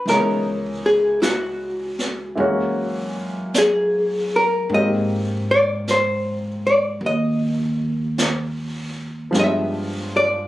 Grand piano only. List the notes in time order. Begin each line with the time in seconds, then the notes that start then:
Already playing: E4
0.07 E3 G#3 B3 C#4
0.11 D#4
2.35 E3 G#3 A#3
2.40 C#4 F#4
4.70 D#3 G#3 A#3 C4
4.75 G4
9.31 F3 G#3 B3
9.36 D4 G4